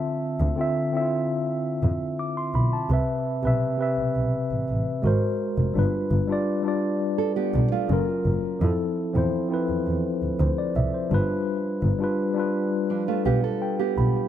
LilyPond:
<<
  \new Staff \with { instrumentName = "Tine electric piano" } { \time 4/4 \key g \mixolydian \tempo 4 = 84 << { r2. d'''16 c'''16 b''16 a''16~ | a''16 r2. r8. | r1 | r2 r8 c''16 d''16 e''16 c''8 r16 |
r2 r8 f''8 g''8 b''8 | } \\ { <d c' f' e''>8 r16 <d c' f' e''>8 <d c' e' f' e''>4. r4 r16 | <c c' b' e''>8 r16 <c c' b' e''>8 <c c' b' e''>4. r16 <gis fis' ais' bis'>8. r16 | <g d' f' b'>8 r16 <g d' f' d''>8 <g d' f' d''>4. r16 <fis cis' eis' ais'>8. r16 | <f c' e' a'>8 r16 <f c' e' c''>8 <f c' e' b'>4. r8. <g d' f' b'>8~ |
<g d' f' b'>8 r16 <g d' f' b'>8 <g d' f' b'>4. r4 r16 | } >> }
  \new Staff \with { instrumentName = "Nylon-string guitar" } { \time 4/4 \key g \mixolydian r1 | r1 | r2 a'16 <b g'>8 <a f'>8 r8. | r1 |
r2 <f d'>16 <a f'>16 <b g'>16 a'8 <b g'>8. | }
  \new Staff \with { instrumentName = "Double bass" } { \clef bass \time 4/4 \key g \mixolydian r8 d,8 r4. f,8 r8 b,,8 | c,8 r16 b,,8. b,,16 b,,16 r16 a,,16 a,,8 gis,,8 r16 f,,16 | g,,8 g,,8 r4. b,,8 fis,,8 fis,,8 | f,8 r16 e,8. e,16 e,16 r16 d,16 d,8 c,8 g,,8~ |
g,,8 g,,8 r4. b,,8 r8 b,,8 | }
>>